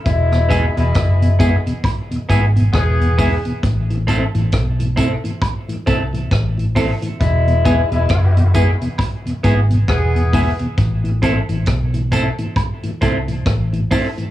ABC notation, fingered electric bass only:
X:1
M:4/4
L:1/16
Q:"Swing 16ths" 1/4=67
K:E
V:1 name="Fingered electric bass" clef=bass
E,,,3 E,,, F,,,3 z3 G,,,2 E,,,3 z | A,,,3 A,,, B,,,3 z3 =C,,2 A,,,3 z | E,,,3 E,,, F,,,3 z3 G,,,2 E,,,3 z | A,,,3 A,,, B,,,3 z3 =C,,2 A,,,2 z2 |]